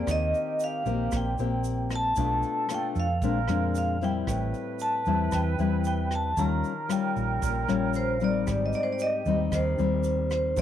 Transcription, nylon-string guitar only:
Already playing: A#3 C4 G4
0.07 D#3
0.86 A#3 C4 G4
1.12 A#2
1.39 A#3 C4 G4
2.17 B2 A3 D4 F4
2.70 A3 D4 F4
3.23 A#2 G#3 C4 D4
3.49 G#3 C4 D4
4.02 G3 C4 E4
4.28 A2
5.07 G3 C4 E4
5.33 E3
5.59 G3 C4 E4
6.38 D#3 G3 C#4 F4
6.89 G3 C#4 F4
7.43 A#2
7.68 G3 C#4 F4
8.21 G3 C4 D#4
8.47 G#2
9.27 G3 C4 D#4
9.53 D#3
9.79 G3 C4 D#4
10.57 G#2 F#3 A#3 C4

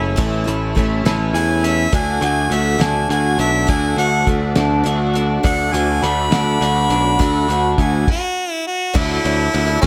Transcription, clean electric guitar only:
Already playing: A3 C#4 E4
0.18 A2
0.48 E4
0.77 A3
1.06 C#4
1.34 E4
1.63 C#4
1.92 D3
2.21 F#4
2.52 A3
2.80 D4
3.10 F#4
3.39 D4
3.68 D3
3.98 F#4
4.28 A3
4.56 D4
4.86 F#4
5.16 D4
5.45 D3
5.75 F#4
6.04 A3
6.32 D4
6.61 F#4
6.90 D4
7.19 D3
7.50 F#4
7.79 A3

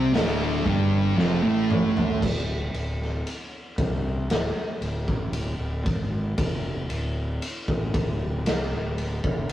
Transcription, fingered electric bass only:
0.13 D1
0.66 G1
1.17 F1
1.42 A1
2.23 D1
2.72 D1
3.78 C2
4.30 D1
4.55 muted fingered electric bass stroke
4.81 D1
5.08 A1
5.32 D1
5.58 D1
5.86 G#1
6.38 F1
6.89 D1
7.68 A1
7.94 D1
8.45 C2
8.71 D1
9.24 F1

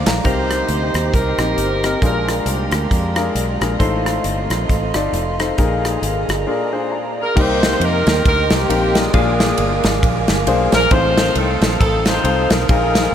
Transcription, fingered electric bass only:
0.06 A#1
0.24 C2
0.69 D2
0.94 D#2
1.13 C2
1.38 A#1
1.56 G1
2.02 A#1
2.46 C2
2.71 D2
2.91 F2
3.35 B1
3.61 A#1
3.80 A1
4.24 G1
4.50 A#1
4.69 A1
4.94 G1
5.13 F1
5.58 A#1
6.02 G#1
6.29 G1
7.37 C2
7.80 F2
8.07 D#2
8.25 D2
8.51 C2
8.70 A#1
9.14 A#1
9.58 G1
9.84 G#1
10.03 A#1
10.28 G1
10.47 B1
10.73 A#1
10.91 A1
11.35 C2
11.61 A#1
11.80 A1
12.24 C2
12.51 B1
12.69 A#1

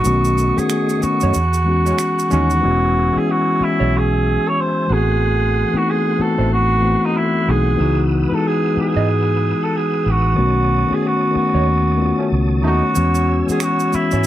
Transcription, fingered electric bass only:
0.06 B1
0.58 muted fingered electric bass stroke
1.03 muted fingered electric bass stroke
1.23 F#2
1.36 E2
2.32 D#2
2.65 E1
3.16 muted fingered electric bass stroke
3.61 muted fingered electric bass stroke
3.81 B1
4.90 A1
5.74 muted fingered electric bass stroke
6.19 muted fingered electric bass stroke
6.39 A1
7.49 B1
7.80 C#2
8.32 muted fingered electric bass stroke
8.77 muted fingered electric bass stroke
8.96 G#2
10.06 A1
10.39 B1
10.91 muted fingered electric bass stroke
11.36 muted fingered electric bass stroke
11.55 D#2
12.32 C#2
12.64 D#2
12.97 E2
13.49 muted fingered electric bass stroke
13.94 muted fingered electric bass stroke
14.13 G#2

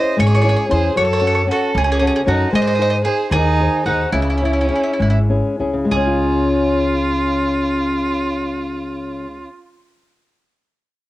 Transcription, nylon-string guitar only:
Already playing: C#4 E4 G#4
0.17 G#3
0.44 C#4 E4 G#4
0.69 C#4 E4 G#4
0.96 F#3
1.21 C#4 F#4 A4
1.47 C#4 F#4 A4
1.75 C#3
2.01 C#4 F#4 A4
2.26 C#4 F#4 A4
2.52 G#3
2.79 D#4 G#4 C5
3.05 D#4 G#4 C5
3.32 D#3
3.60 D#4 G#4 C5
3.87 D#4 G#4 C5
4.13 C#3
4.42 C#4 E4 G#4
4.69 C#4 E4 G#4
4.99 G#3
5.29 C#4 E4 G#4
5.59 C#4 E4 G#4
5.73 C#3
5.85 G#3
5.96 C#4
6.07 F4

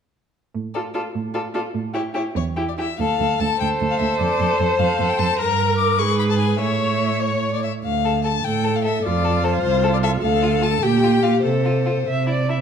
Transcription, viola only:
0.76 F4
0.95 F4
1.34 F4
1.54 F4
1.94 E4
2.14 E4
2.56 E4
2.78 E4
3.60 C5
5.39 A#4
5.99 G#4
6.61 C#5
8.45 A4
9.05 F4
10.22 A4
10.82 G4
11.45 A4
12.08 E5
12.29 D5
12.50 E5

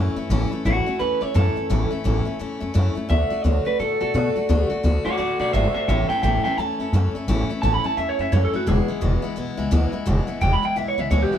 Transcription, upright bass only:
0.16 muted upright bass stroke
0.30 A1
0.51 muted upright bass stroke
0.65 A1
0.87 muted upright bass stroke
1.00 E2
1.22 F#2
1.35 F#2
1.56 muted upright bass stroke
1.70 A1
1.92 muted upright bass stroke
2.05 A1
2.27 muted upright bass stroke
2.40 E2
2.62 F#2
2.75 F#2
2.96 muted upright bass stroke
3.10 D2
3.31 muted upright bass stroke
3.44 D2
3.66 muted upright bass stroke
3.79 A2
4.01 B2
4.14 B2
4.36 muted upright bass stroke
4.49 D2
4.71 muted upright bass stroke
4.84 D2
5.05 muted upright bass stroke
5.18 A2
5.40 B2
5.53 G#1
5.75 muted upright bass stroke
5.88 A1
6.09 muted upright bass stroke
6.23 A1
6.44 muted upright bass stroke
6.58 E2
6.79 F#2
6.93 F#2
7.15 muted upright bass stroke
7.28 A1
7.50 muted upright bass stroke
7.63 A1
7.84 muted upright bass stroke
7.97 E2
8.19 F#2
8.32 F#2
8.54 muted upright bass stroke
8.67 E1
8.88 muted upright bass stroke
9.02 E1
9.23 muted upright bass stroke
9.37 B1
9.58 C#2
9.72 D2
9.93 muted upright bass stroke
10.06 E1
10.28 muted upright bass stroke
10.41 E1
10.62 muted upright bass stroke
10.76 B1
10.97 C#2
11.11 D2
11.32 muted upright bass stroke

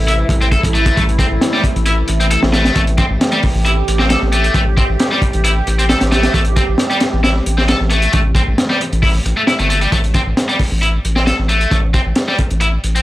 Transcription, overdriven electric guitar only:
0.07 E4
0.41 C4
0.52 A4
0.74 A3
0.97 A3
1.19 C4
1.53 G3
1.86 E4
2.20 C4
2.31 A4
2.53 A3
2.76 A3
2.98 C4
3.32 G3
3.65 E4
3.99 C4
4.10 A4
4.32 A3
4.55 A3
4.77 C4
5.11 G3
5.44 E4
5.79 C4
5.89 A4
6.12 A3
6.34 A3
6.57 C4
6.90 G3
7.23 E4
7.58 C4
7.68 A4
7.91 A3
8.13 A3
8.35 C4
8.70 G3
9.03 E4
9.37 A3
9.47 E4
9.59 A3
9.70 A3
9.81 G3
9.92 A3
10.15 C4
10.49 G3
10.82 E4
11.16 C4
11.27 A4
11.49 A3
11.71 A3
11.94 C4
12.28 G3
12.61 E4
12.96 C4

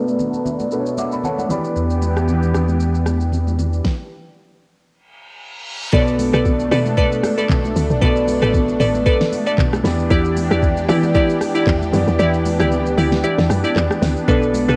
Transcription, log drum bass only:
5.93 B1
6.34 B1
6.72 B2
7.50 B1
7.76 D2
7.90 B1
8.02 B1
8.42 A1
8.80 A1
9.58 B1
9.84 E2
10.11 E2
10.51 E2
10.89 E3
11.67 E2
11.93 F#2
12.08 E2
12.19 E2
12.60 D2
12.98 D2
13.38 E2
13.50 F#2
13.76 E2
14.02 D2
14.28 B1
14.68 B1

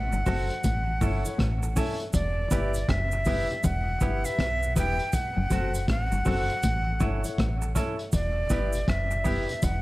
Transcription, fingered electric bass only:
Already playing: A1
0.13 G1
0.27 F#1
0.64 A1
1.02 G1
1.39 A1
2.14 E1
2.51 G1
2.89 F#1
3.64 E1
4.01 G1
4.39 B1
4.77 E1
5.38 F#1
5.51 F#1
5.88 A1
6.12 G1
6.26 F#1
6.64 A1
7.01 G1
7.38 A1
8.13 E1
8.50 G1
8.88 F#1
9.63 E1

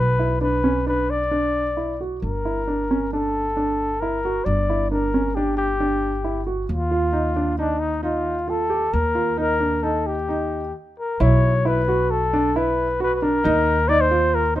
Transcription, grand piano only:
0.19 E4
0.41 D4
0.64 C#4
0.86 D4
1.31 D4
1.77 E4
2.01 F#4
2.45 E4
2.68 D4
2.91 C#4
3.13 D4
3.57 D4
4.02 E4
4.25 F#4
4.70 E4
4.92 D4
5.14 C#4
5.37 D4
5.80 D4
6.24 E4
6.47 F#4
6.91 F4
7.13 D#4
7.36 D4
7.59 D#4
8.03 D#4
8.48 F4
8.70 G4
9.15 F4
9.38 D#4
9.60 D4
9.83 D#4
10.29 D#4
11.20 E4
11.65 E4
11.88 F#4
12.33 D4
12.56 E4
13.00 F#4
13.22 D4
13.44 D#4
13.89 D#4
14.11 F4
14.56 D#4

